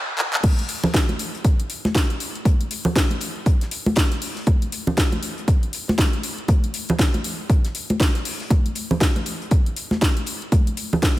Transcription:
0.18 clap
0.33 clap
0.43 kick, closed hi-hat, crash, high conga
0.59 closed hi-hat
0.69 closed hi-hat, open hi-hat
0.84 low conga
0.94 kick, snare, closed hi-hat
1.09 closed hi-hat, high conga
1.19 closed hi-hat, open hi-hat
1.35 closed hi-hat
1.44 kick, closed hi-hat
1.60 closed hi-hat
1.70 closed hi-hat, open hi-hat
1.85 snare, high conga
1.95 kick, snare, closed hi-hat
2.10 closed hi-hat
2.20 closed hi-hat, open hi-hat
2.35 closed hi-hat
2.45 kick, closed hi-hat, high conga
2.61 closed hi-hat
2.71 closed hi-hat, open hi-hat
2.85 low conga
2.96 kick, snare, closed hi-hat
3.10 closed hi-hat, high conga
3.21 closed hi-hat, open hi-hat
3.46 kick, closed hi-hat
3.61 snare, closed hi-hat
3.71 closed hi-hat, open hi-hat
3.86 high conga
3.96 kick, snare, closed hi-hat
4.11 snare, closed hi-hat
4.22 open hi-hat
4.36 snare, closed hi-hat
4.47 kick, closed hi-hat, high conga
4.62 closed hi-hat
4.72 closed hi-hat, open hi-hat
4.87 low conga
4.97 kick, snare, closed hi-hat
5.12 closed hi-hat, high conga
5.23 closed hi-hat, open hi-hat
5.38 closed hi-hat
5.48 kick, closed hi-hat
5.63 closed hi-hat
5.73 closed hi-hat, open hi-hat
5.88 snare, high conga
5.98 kick, snare, closed hi-hat
6.13 closed hi-hat
6.23 closed hi-hat, open hi-hat
6.38 closed hi-hat
6.48 kick, closed hi-hat, high conga
6.64 closed hi-hat
6.74 closed hi-hat, open hi-hat
6.89 closed hi-hat, low conga
6.99 kick, snare, closed hi-hat
7.14 closed hi-hat, high conga
7.24 closed hi-hat, open hi-hat
7.50 kick, closed hi-hat
7.65 snare, closed hi-hat
7.75 closed hi-hat, open hi-hat
7.90 closed hi-hat, high conga
8.00 kick, snare, closed hi-hat
8.15 snare, closed hi-hat
8.25 open hi-hat
8.40 snare, closed hi-hat
8.50 kick, closed hi-hat, high conga
8.66 closed hi-hat
8.75 closed hi-hat, open hi-hat
8.91 low conga
9.00 kick, snare, closed hi-hat
9.16 closed hi-hat, high conga
9.26 closed hi-hat, open hi-hat
9.42 closed hi-hat
9.51 kick, closed hi-hat
9.66 closed hi-hat
9.76 closed hi-hat, open hi-hat
9.91 snare, high conga
10.01 kick, snare, closed hi-hat
10.17 closed hi-hat
10.26 closed hi-hat, open hi-hat
10.42 closed hi-hat
10.52 kick, closed hi-hat, high conga
10.67 closed hi-hat
10.77 closed hi-hat, open hi-hat
10.93 low conga
11.03 kick, snare, closed hi-hat

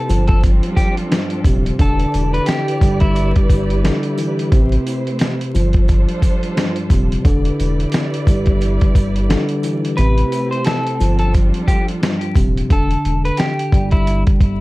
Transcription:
Already playing: C3 C4 A4
0.09 G1 F3 G3 D4 F4 A4, closed hi-hat, sleigh bells
0.27 A4, kick, closed hi-hat
0.43 kick, closed hi-hat, sleigh bells
0.63 closed hi-hat
0.76 G4, kick, closed hi-hat, sleigh bells
0.97 closed hi-hat
1.11 G2, snare, closed hi-hat, sleigh bells
1.30 closed hi-hat
1.45 D#1 C3, kick, closed hi-hat, sleigh bells
1.66 closed hi-hat
1.79 E1 D3 E3 E4 G4 A4 B4 D5, kick, closed hi-hat, sleigh bells
1.99 closed hi-hat
2.14 E1, closed hi-hat, sleigh bells
2.34 B4, closed hi-hat
2.46 G4, snare, closed hi-hat, sleigh bells
2.68 closed hi-hat
2.81 G1 G3, kick, closed hi-hat, sleigh bells
3.00 E4, kick, closed hi-hat
3.15 closed hi-hat, sleigh bells
3.36 kick, closed hi-hat
3.50 G1, kick, closed hi-hat, sleigh bells
3.70 closed hi-hat
3.84 D3, snare, closed hi-hat, sleigh bells
4.03 closed hi-hat
4.18 E3, closed hi-hat, sleigh bells
4.39 closed hi-hat
4.52 A1 C3 A3 C5, kick, closed hi-hat, sleigh bells
4.72 closed hi-hat
4.87 closed hi-hat, sleigh bells
5.07 closed hi-hat
5.19 snare, closed hi-hat, sleigh bells
5.41 closed hi-hat
5.54 G1 F3 G3 D4 F4 A4 C5, closed hi-hat, sleigh bells
5.73 kick, closed hi-hat
5.88 kick, closed hi-hat, sleigh bells
6.09 closed hi-hat
6.22 kick, closed hi-hat, sleigh bells
6.43 closed hi-hat
6.56 G2, snare, closed hi-hat, sleigh bells
6.76 closed hi-hat
6.90 D#1 C3, kick, closed hi-hat, sleigh bells
7.12 closed hi-hat
7.24 E1 D3 E3 E4 G4 B4 D5, kick, closed hi-hat, sleigh bells
7.45 closed hi-hat
7.60 E1, closed hi-hat, sleigh bells
7.80 closed hi-hat
7.92 snare, closed hi-hat, sleigh bells
8.14 closed hi-hat
8.27 G1 G3, kick, closed hi-hat, sleigh bells
8.46 kick, closed hi-hat
8.61 closed hi-hat, sleigh bells
8.81 kick, closed hi-hat
8.95 G1, kick, closed hi-hat, sleigh bells
9.16 closed hi-hat
9.29 D3, snare, closed hi-hat, sleigh bells
9.49 closed hi-hat
9.63 E3, closed hi-hat, sleigh bells
9.85 closed hi-hat
9.97 A1 C3 A3 C4 E4 G4 B4, closed hi-hat, sleigh bells
10.18 closed hi-hat
10.32 closed hi-hat, sleigh bells
10.51 C5, closed hi-hat
10.65 A4, snare, closed hi-hat, sleigh bells
10.87 closed hi-hat
11.00 G1 F3 G3 D4 F4 A4, closed hi-hat, sleigh bells
11.19 A4, closed hi-hat
11.34 kick, closed hi-hat, sleigh bells
11.54 closed hi-hat
11.68 G4, kick, closed hi-hat, sleigh bells
11.88 closed hi-hat
12.02 G2, snare, closed hi-hat, sleigh bells
12.21 closed hi-hat
12.36 D#1 C3, kick, closed hi-hat, sleigh bells
12.57 closed hi-hat
12.70 E1 D3 A4, kick, closed hi-hat
12.91 closed hi-hat
13.05 E1, closed hi-hat
13.25 B4, closed hi-hat
13.37 G4, snare, closed hi-hat
13.59 closed hi-hat
13.72 G1 G3, kick, closed hi-hat
13.91 E4, kick, closed hi-hat
14.07 closed hi-hat
14.27 kick, closed hi-hat
14.41 G1, kick, closed hi-hat

